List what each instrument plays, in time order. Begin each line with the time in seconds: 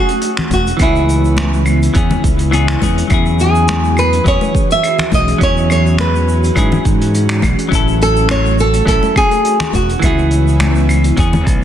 Already playing: analog synth pad A3 C#4 F#4, nylon-string guitar F#4
0.08 closed hi-hat, shaker
0.21 closed hi-hat, shaker
0.37 finger snap, closed hi-hat, low conga, shaker
0.51 fingered electric bass E1, nylon-string guitar F#4, kick, closed hi-hat, high conga, shaker
0.67 closed hi-hat, shaker
0.77 fingered electric bass C#2, analog synth pad C#3 B3 E4, clean electric guitar E3 B3, kick, closed hi-hat, claves, shaker
0.81 clean electric guitar C#4 G#4, nylon-string guitar E4
0.96 shaker
1.09 closed hi-hat, shaker
1.25 shaker
1.37 finger snap, closed hi-hat, high conga, shaker
1.53 shaker
1.66 claves, shaker
1.82 closed hi-hat, shaker
1.94 fingered electric bass E2, clean electric guitar E3 B3 C#4 G#4, kick, closed hi-hat, shaker
2.11 high conga, low conga, shaker
2.23 fingered electric bass C#2, kick, closed hi-hat, shaker
2.39 closed hi-hat, shaker
2.51 clean electric guitar E3 B3 C#4 G#4, closed hi-hat, claves, shaker
2.68 finger snap, closed hi-hat, shaker
2.80 fingered electric bass E2, clean electric guitar E3 B3 C#4 G#4, kick, closed hi-hat, high conga, shaker
2.98 closed hi-hat, shaker
3.07 fingered electric bass E2, analog synth pad E3 C#4 F#4 G#4, clean electric guitar F#3 C#4, kick, closed hi-hat, claves, shaker
3.12 clean electric guitar E4 G#4
3.26 shaker
3.39 nylon-string guitar G#4, closed hi-hat, shaker
3.55 shaker
3.67 finger snap, closed hi-hat, high conga, shaker
3.84 shaker
3.97 nylon-string guitar B4, claves, shaker
4.12 closed hi-hat, shaker
4.24 fingered electric bass E2, clean electric guitar F#3 C#4 E4 G#4, nylon-string guitar C#5, kick, closed hi-hat, shaker
4.41 high conga, shaker
4.55 kick, shaker
4.70 nylon-string guitar E5, closed hi-hat, shaker
4.83 closed hi-hat, claves, shaker
4.99 finger snap, closed hi-hat, low conga, shaker
5.12 fingered electric bass B1, nylon-string guitar D#5, kick, closed hi-hat, high conga, shaker
5.28 closed hi-hat, shaker
5.38 fingered electric bass E2, clean electric guitar F#3 C#4, kick, closed hi-hat, shaker
5.43 clean electric guitar E4 G#4, nylon-string guitar C#5
5.57 shaker
5.70 nylon-string guitar C#5, closed hi-hat, claves, shaker
5.87 shaker
5.98 nylon-string guitar B4, finger snap, closed hi-hat, high conga, shaker
6.15 shaker
6.29 shaker
6.44 closed hi-hat, shaker
6.55 fingered electric bass G#2, clean electric guitar F#3 C#4 E4 G#4, kick, closed hi-hat, claves, shaker
6.72 high conga, low conga, shaker
6.85 fingered electric bass G#2, kick, closed hi-hat, shaker
7.01 closed hi-hat, shaker
7.14 closed hi-hat, shaker
7.29 finger snap, closed hi-hat, shaker
7.42 fingered electric bass B1, kick, closed hi-hat, high conga, claves, shaker
7.58 closed hi-hat, shaker
7.69 fingered electric bass A1, clean electric guitar F#3 C#4, analog synth pad A3, kick, closed hi-hat, shaker
7.73 clean electric guitar E4 A4
7.88 shaker
8.01 nylon-string guitar A4, closed hi-hat, shaker
8.17 shaker
8.29 nylon-string guitar C#5, finger snap, closed hi-hat, high conga, claves, shaker
8.46 shaker
8.59 nylon-string guitar A4, shaker
8.73 closed hi-hat, shaker
8.86 fingered electric bass A1, clean electric guitar F#3 C#4 E4 A4, nylon-string guitar A4, kick, closed hi-hat, shaker
9.03 high conga, shaker
9.16 nylon-string guitar G#4, kick, claves, shaker
9.31 closed hi-hat, shaker
9.45 closed hi-hat, shaker
9.60 finger snap, closed hi-hat, low conga, shaker
9.73 fingered electric bass E1, nylon-string guitar F#4, kick, closed hi-hat, high conga, shaker
9.89 closed hi-hat, shaker
9.99 fingered electric bass C#2, analog synth pad C#3 B3 E4, clean electric guitar E3 B3, kick, closed hi-hat, claves, shaker
10.04 clean electric guitar C#4 G#4, nylon-string guitar E4
10.19 shaker
10.31 closed hi-hat, shaker
10.48 shaker
10.60 finger snap, closed hi-hat, high conga, shaker
10.75 shaker
10.89 closed hi-hat, claves, shaker
11.04 closed hi-hat, shaker
11.17 fingered electric bass E2, clean electric guitar E3 B3 C#4 G#4, kick, closed hi-hat, shaker
11.33 high conga, low conga, shaker
11.47 fingered electric bass B1, kick, closed hi-hat, shaker